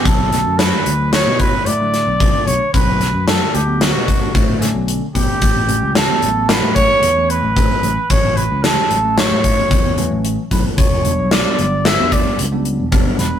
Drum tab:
HH |xxxxxxxxxx|xxxxxxxxxx|xxxxxxxxxx|xxxxxxxxxx|
SD |-oo-o--o--|-oo-o--o--|--o-o-----|--o-o-----|
BD |o----o--o-|o----oo--o|o----o--o-|o----oo--o|

HH |xxxxxxxxxx|
SD |--o-o----o|
BD |o----o--o-|